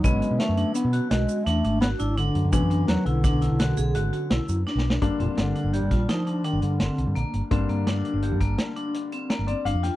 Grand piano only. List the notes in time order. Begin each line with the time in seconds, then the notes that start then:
0.04 D3 F#3 B3 C#4
2.53 D3 F#3 B3 C#4
5.02 D3 G3 A#3 D4
7.51 D3 G3 A#3 D4
9.47 D5
9.65 F5
9.83 G5